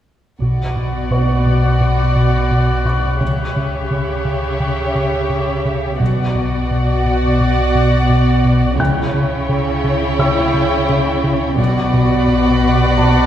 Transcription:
0.41 1.08 B1 soft
0.41 3.23 B1 medium
0.41 3.17 B2 soft
0.41 0.63 B2 medium
0.41 3.17 F#4 soft
0.41 3.17 D5 soft
0.41 3.17 F#5 soft
0.41 5.61 B5 soft
0.77 0.98 B2 soft
1.11 1.32 B2 soft
1.11 3.17 B4 soft
1.11 2.85 C#6 soft
1.11 5.62 F#6 soft
1.46 1.67 B2 soft
1.81 2.02 B2 medium
2.16 2.37 B2 soft
2.51 2.72 B2 soft
2.85 3.06 B2 soft
2.85 4.92 C#6 soft
3.21 3.87 C#2 soft
3.21 6.01 C#2 medium
3.21 3.42 C#3 medium
3.21 5.96 C#3 soft
3.21 5.97 G4 soft
3.21 5.97 C#5 soft
3.21 5.97 E5 soft
3.56 3.77 C#3 soft
3.91 4.12 C#3 soft
4.25 4.46 C#3 soft
4.60 4.81 C#3 medium
4.95 5.16 C#3 soft
5.30 5.51 C#3 soft
5.65 5.86 C#3 medium
5.99 8.81 B1 medium
5.99 6.66 B1 soft
5.99 8.75 B2 soft
5.99 6.21 B2 medium
5.99 8.75 F#4 soft
5.99 8.75 D5 medium
5.99 8.76 F#5 soft
6.36 6.56 B2 soft
6.71 6.92 B2 soft
7.06 7.27 B2 soft
7.40 7.61 B2 medium
7.75 7.96 B2 soft
8.10 8.31 B2 soft
8.45 8.66 B2 medium
8.79 9.45 C#2 medium
8.79 11.60 C#2 medium
8.79 11.54 C#3 medium
8.79 9.01 C#3 medium
8.79 11.55 E4 medium
8.79 11.55 C#5 medium
8.79 10.85 G5 soft
8.79 11.55 G5 medium
8.79 10.85 F#6 soft
9.14 9.35 C#3 medium
9.49 9.70 C#3 medium
9.84 10.05 C#3 medium
10.19 10.40 C#3 medium
10.19 12.25 E6 medium
10.54 10.75 C#3 medium
10.88 11.10 C#3 medium
10.88 12.94 E5 soft
11.24 11.45 C#3 medium
11.58 13.26 B1 medium
11.58 12.24 B1 medium
11.58 11.79 B2 medium
11.58 13.26 B2 medium
11.58 13.26 F#4 medium
11.58 13.26 D5 medium
11.58 13.26 F#5 medium
11.58 13.26 B5 soft
11.93 12.14 B2 medium
12.28 12.49 B2 medium
12.28 13.26 F#6 soft
12.63 12.84 B2 soft
12.97 13.20 B2 medium
12.97 13.26 A5 soft
12.97 13.26 A6 soft

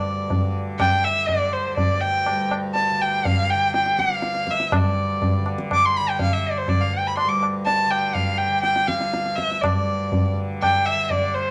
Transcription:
0.00 1.66 D2 medium
0.00 2.28 G2 medium
0.00 0.41 D3 medium
0.00 0.54 D5 medium
0.30 tabla tin medium
0.30 tabla ge medium
0.41 1.04 D3 medium
0.79 1.06 G5 medium
0.79 tabla na medium
0.79 tabla ge medium
1.04 2.91 D3 soft
1.04 1.29 E5 medium
1.28 1.54 D5 medium
1.28 tabla tin medium
1.28 tabla ge medium
1.53 1.76 C5 medium
1.66 4.16 D2 medium
1.76 2.02 D5 medium
1.76 tabla tin medium
1.76 tabla ge medium
2.00 2.50 G5 medium
2.26 4.76 G2 medium
2.26 tabla na medium
2.51 tabla na medium
2.74 3.03 A5 medium
2.74 tabla tin medium
2.91 3.54 D3 medium
3.01 3.27 G5 medium
3.25 3.52 F5 medium
3.25 tabla tin medium
3.25 tabla ge medium
3.50 5.39 D3 soft
3.50 3.74 G5 medium
3.74 4.01 G5 medium
3.74 tabla te medium
3.86 tabla te medium
3.99 4.52 F5 medium
3.99 tabla ke medium
4.10 tabla te soft
4.16 6.62 D2 medium
4.22 tabla te medium
4.35 tabla te medium
4.47 4.66 E5 medium
4.47 tabla ke soft
4.60 tabla te medium
4.66 4.78 E5 soft
4.72 tabla na medium
4.72 tabla ge medium
4.77 7.24 G2 medium
4.77 5.48 D5 medium
5.22 tabla tin medium
5.22 tabla ge medium
5.39 6.01 D3 medium
5.46 tabla na medium
5.58 tabla ke medium
5.71 5.87 D6 medium
5.71 tabla na medium
5.71 tabla ge medium
5.86 5.98 C6 medium
5.97 6.11 B5 medium
6.01 7.86 D3 medium
6.09 6.20 G5 medium
6.19 6.34 F5 medium
6.19 tabla tin medium
6.19 tabla ge medium
6.33 6.48 E5 medium
6.46 6.59 D5 medium
6.58 6.70 C5 medium
6.62 9.10 D2 medium
6.68 6.82 D5 medium
6.68 tabla tin medium
6.68 tabla ge medium
6.81 6.95 F5 medium
6.93 7.09 G5 medium
7.07 7.17 B5 medium
7.17 7.30 C6 medium
7.17 tabla na medium
7.24 9.72 G2 medium
7.29 7.42 D6 medium
7.43 tabla na medium
7.66 7.92 A5 medium
7.66 tabla tin medium
7.86 8.48 D3 medium
7.90 8.16 G5 medium
7.90 tabla na medium
8.14 8.40 F5 medium
8.14 tabla tin medium
8.14 tabla ge medium
8.38 8.62 G5 medium
8.48 10.34 D3 medium
8.62 8.89 G5 medium
8.62 tabla te medium
8.76 tabla te medium
8.87 9.37 F5 medium
8.87 tabla ke medium
9.01 tabla te soft
9.11 11.51 D2 soft
9.11 tabla te medium
9.26 tabla te medium
9.36 9.63 E5 medium
9.36 tabla ke medium
9.51 tabla te medium
9.61 10.35 D5 medium
9.61 tabla na medium
9.61 tabla ge medium
9.72 11.51 G2 medium
10.12 tabla tin medium
10.12 tabla ge medium
10.34 10.94 D3 medium
10.62 10.87 G5 medium
10.62 tabla na medium
10.62 tabla ge medium
10.85 11.12 E5 medium
10.94 11.51 D3 soft
11.10 11.36 D5 medium
11.10 tabla tin medium
11.10 tabla ge medium
11.34 11.51 C5 medium

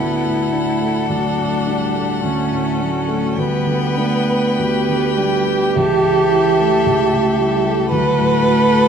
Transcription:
0.00 1.09 D2 soft
0.00 0.24 A2 soft
0.00 0.13 A3 soft
0.00 0.53 B3 medium
0.00 0.53 D4 soft
0.00 1.08 E4 medium
0.00 3.40 A4 soft
0.00 3.34 F#5 soft
0.24 0.70 A2 soft
0.53 1.13 A3 medium
0.53 0.98 D4 soft
0.82 1.27 A3 soft
1.09 2.22 D2 soft
1.09 1.69 F#3 medium
1.09 2.22 D4 medium
1.38 1.84 A2 soft
1.67 2.26 G3 medium
1.67 2.13 D4 soft
1.95 2.41 A3 soft
2.23 3.34 D2 soft
2.23 2.83 A3 soft
2.23 3.39 C#4 medium
2.52 2.97 A2 soft
2.79 3.38 F#3 medium
2.79 3.25 D4 soft
3.08 3.37 A3 soft
3.36 4.57 D2 medium
3.36 3.99 G3 medium
3.36 4.60 B3 medium
3.36 5.77 B4 medium
3.36 5.77 G5 soft
3.67 4.16 D3 soft
3.97 4.62 A3 medium
3.97 4.47 D4 soft
4.28 4.77 B3 soft
4.59 5.72 D2 soft
4.59 5.19 B3 medium
4.59 7.89 G4 medium
4.89 5.36 D3 soft
5.18 5.76 G3 medium
5.18 5.64 D4 soft
5.47 5.76 B3 soft
5.75 6.85 C#2 medium
5.75 6.87 E3 medium
5.75 7.91 A4 medium
5.75 7.89 E5 medium
6.04 6.48 C#3 soft
6.32 6.75 E4 soft
6.60 7.03 A3 soft
6.86 7.88 C#2 medium
6.86 7.40 A3 medium
7.13 7.55 C#3 soft
7.39 7.91 G3 medium
7.39 7.82 E4 medium
7.67 7.92 A3 soft
7.90 8.88 D2 medium
7.90 8.44 F#3 medium
7.90 8.88 A4 medium
7.90 8.88 B4 loud
7.90 8.88 F#5 medium
8.18 8.59 A2 soft
8.42 8.88 A3 medium
8.42 8.86 F#4 soft
8.71 8.88 A3 soft

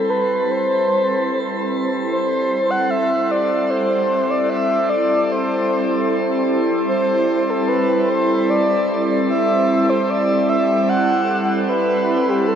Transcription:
0.00 12.55 G3 medium
0.00 12.55 C4 medium
0.00 12.55 E4 medium
0.00 0.11 A4 loud
0.00 12.55 A4 medium
0.10 0.52 B4 loud
0.51 1.70 C5 loud
2.12 2.72 C5 loud
2.70 2.92 F#5 medium
2.90 3.33 E5 loud
3.31 3.72 D5 loud
3.70 4.32 C5 loud
4.30 4.51 D5 medium
4.49 4.91 E5 loud
4.89 5.33 D5 medium
5.32 6.51 C5 medium
6.88 7.51 C5 loud
7.50 7.70 A4 medium
7.68 8.11 B4 medium
8.09 8.51 C5 medium
8.50 9.10 D5 loud
9.30 9.91 E5 loud
9.89 10.11 C5 medium
10.10 10.51 D5 loud
10.49 10.91 E5 loud
10.89 11.49 F#5 loud
11.68 12.31 B4 loud
12.29 12.49 G4 medium
12.47 12.55 A4 loud

